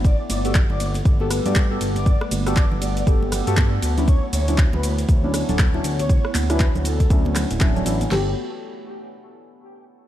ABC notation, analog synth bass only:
X:1
M:4/4
L:1/16
Q:"Swing 16ths" 1/4=119
K:Glyd
V:1 name="Analog synth bass" clef=bass
G,,, z G,,,3 G,,,3 G,,,3 G,,3 G,,,2- | G,,, z G,,,3 G,,,3 G,,,3 G,,3 D,,2- | D,, z D,,3 D,,3 D,,3 D,,,3 D,,2- | D,, z D,,3 D,,3 D,,3 D,,,3 A,,,2 |
G,,,2 z12 z2 |]